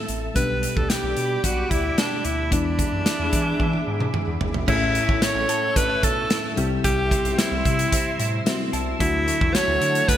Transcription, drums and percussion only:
0.08 closed hi-hat medium
0.36 kick medium
0.36 closed hi-hat medium
0.63 closed hi-hat medium
0.77 kick medium
0.90 snare medium
0.90 closed hi-hat medium
1.17 closed hi-hat medium
1.44 kick medium
1.44 closed hi-hat medium
1.71 kick medium
1.71 closed hi-hat medium
1.98 snare loud
1.98 closed hi-hat medium
2.25 closed hi-hat medium
2.52 kick medium
2.52 closed hi-hat medium
2.79 kick medium
2.79 closed hi-hat medium
3.06 snare medium
3.06 closed hi-hat medium
3.33 kick medium
3.33 closed hi-hat medium
3.60 kick medium
3.60 high tom soft
3.73 high tom soft
4.00 mid tom medium
4.14 mid tom medium
4.41 floor tom medium
4.54 floor tom medium
4.68 kick loud
4.68 crash medium
4.95 closed hi-hat medium
5.09 kick medium
5.22 snare medium
5.22 closed hi-hat medium
5.49 closed hi-hat medium
5.76 kick medium
5.76 closed hi-hat loud
6.03 kick medium
6.03 closed hi-hat medium
6.30 snare loud
6.30 closed hi-hat medium
6.57 closed hi-hat medium
6.84 kick loud
6.84 closed hi-hat medium
7.11 kick medium
7.11 closed hi-hat medium
7.25 closed hi-hat medium
7.39 snare loud
7.39 closed hi-hat medium
7.65 kick medium
7.65 closed hi-hat medium
7.79 closed hi-hat medium
7.92 kick medium
7.92 closed hi-hat loud
8.20 closed hi-hat medium
8.46 snare loud
8.46 closed hi-hat medium
8.73 closed hi-hat medium
9.00 kick loud
9.00 closed hi-hat medium
9.28 closed hi-hat medium
9.41 kick loud
9.55 snare medium
9.55 closed hi-hat medium
9.82 closed hi-hat medium
9.95 closed hi-hat medium
10.09 kick medium
10.09 closed hi-hat loud

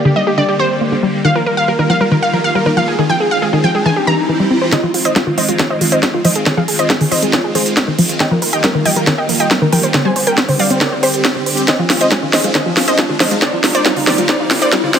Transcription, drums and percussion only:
4.72 kick loud
4.72 snare soft
4.72 closed hi-hat medium
4.94 open hi-hat loud
5.05 closed hi-hat medium
5.16 kick loud
5.16 snare soft
5.16 closed hi-hat medium
5.38 open hi-hat loud
5.49 closed hi-hat medium
5.59 kick loud
5.59 snare soft
5.59 closed hi-hat medium
5.81 open hi-hat loud
5.92 closed hi-hat medium
6.03 kick loud
6.03 snare soft
6.03 closed hi-hat medium
6.25 open hi-hat loud
6.35 closed hi-hat medium
6.46 kick loud
6.46 snare soft
6.46 closed hi-hat medium
6.68 open hi-hat loud
6.79 closed hi-hat medium
6.90 kick loud
6.90 snare medium
6.90 closed hi-hat medium
7.01 open hi-hat medium
7.12 open hi-hat loud
7.22 closed hi-hat medium
7.33 kick loud
7.33 snare medium
7.33 closed hi-hat medium
7.55 open hi-hat loud
7.66 closed hi-hat medium
7.77 kick loud
7.77 snare medium
7.77 closed hi-hat medium
7.99 open hi-hat loud
8.09 closed hi-hat medium
8.20 kick loud
8.20 snare medium
8.20 closed hi-hat medium
8.42 open hi-hat loud
8.53 closed hi-hat medium
8.64 kick loud
8.64 snare medium
8.64 closed hi-hat medium
8.85 open hi-hat loud
8.96 closed hi-hat medium
9.07 kick loud
9.07 snare medium
9.07 closed hi-hat medium
9.29 open hi-hat loud
9.40 closed hi-hat medium
9.51 kick loud
9.51 snare medium
9.51 closed hi-hat medium
9.72 open hi-hat loud
9.83 closed hi-hat medium
9.94 kick loud
9.94 snare medium
9.94 closed hi-hat medium
10.16 open hi-hat loud
10.27 closed hi-hat medium
10.38 kick loud
10.38 snare medium
10.38 closed hi-hat medium
10.49 open hi-hat medium
10.59 open hi-hat loud
10.70 closed hi-hat medium
10.81 kick loud
10.81 snare medium
10.81 closed hi-hat medium
11.03 open hi-hat loud
11.14 closed hi-hat medium
11.25 kick loud
11.25 snare medium
11.25 closed hi-hat medium
11.46 open hi-hat loud
11.57 closed hi-hat medium
11.68 kick loud
11.68 snare medium
11.68 closed hi-hat medium
11.90 snare medium
11.90 open hi-hat loud
12.01 closed hi-hat medium
12.12 kick loud
12.12 snare medium
12.12 closed hi-hat medium
12.33 snare medium
12.33 open hi-hat loud
12.44 closed hi-hat medium
12.55 kick loud
12.55 snare medium
12.55 closed hi-hat medium
12.77 snare medium
12.77 open hi-hat loud
12.88 closed hi-hat medium
12.99 kick loud
12.99 snare medium
12.99 closed hi-hat medium
13.20 snare medium
13.20 open hi-hat loud
13.31 closed hi-hat medium
13.42 kick loud
13.42 snare medium
13.42 closed hi-hat medium
13.64 snare medium
13.64 open hi-hat loud
13.75 closed hi-hat medium
13.86 kick loud
13.86 snare medium
13.86 closed hi-hat medium
13.96 open hi-hat medium
14.07 snare medium
14.07 open hi-hat loud
14.18 closed hi-hat medium
14.29 kick loud
14.29 snare medium
14.29 closed hi-hat medium
14.51 snare medium
14.51 open hi-hat loud
14.62 closed hi-hat medium
14.72 kick loud
14.72 snare medium
14.72 closed hi-hat medium
14.94 snare medium
14.94 open hi-hat loud

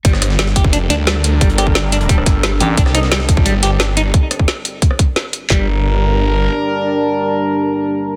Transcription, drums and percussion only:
0.05 kick loud
0.05 closed hi-hat medium
0.13 cross-stick soft
0.13 snare soft
0.22 cross-stick soft
0.22 closed hi-hat medium
0.30 snare soft
0.39 snare loud
0.39 closed hi-hat medium
0.47 snare medium
0.56 kick loud
0.56 closed hi-hat medium
0.56 closed hi-hat loud
0.64 kick loud
0.73 closed hi-hat medium
0.90 snare soft
0.90 closed hi-hat medium
0.90 closed hi-hat loud
1.07 snare loud
1.07 closed hi-hat medium
1.24 closed hi-hat medium
1.24 closed hi-hat loud
1.41 kick loud
1.41 closed hi-hat medium
1.50 closed hi-hat soft
1.58 cross-stick soft
1.58 closed hi-hat medium
1.67 kick medium
1.75 snare loud
1.75 closed hi-hat medium
1.92 closed hi-hat medium
2.01 closed hi-hat soft
2.09 kick loud
2.09 closed hi-hat medium
2.18 cross-stick soft
2.26 kick loud
2.26 snare soft
2.26 closed hi-hat loud
2.26 closed hi-hat medium
2.43 snare loud
2.43 closed hi-hat medium
2.60 closed hi-hat loud
2.60 closed hi-hat medium
2.77 kick loud
2.77 closed hi-hat medium
2.86 cross-stick soft
2.86 snare soft
2.95 cross-stick soft
2.95 closed hi-hat medium
3.03 snare soft
3.12 snare loud
3.12 closed hi-hat medium
3.20 snare medium
3.29 kick loud
3.29 closed hi-hat medium
3.37 kick loud
3.46 closed hi-hat medium
3.63 snare soft
3.63 closed hi-hat medium
3.80 snare loud
3.80 closed hi-hat medium
3.97 closed hi-hat medium
4.14 kick loud
4.14 closed hi-hat medium
4.31 cross-stick soft
4.31 closed hi-hat medium
4.39 kick medium
4.48 snare loud
4.48 closed hi-hat medium
4.65 closed hi-hat medium
4.82 kick loud
4.82 closed hi-hat medium
4.91 cross-stick soft
4.99 kick loud
4.99 closed hi-hat medium
5.16 snare loud
5.16 closed hi-hat medium
5.33 closed hi-hat medium
5.50 kick loud
5.50 snare loud
5.50 clap medium

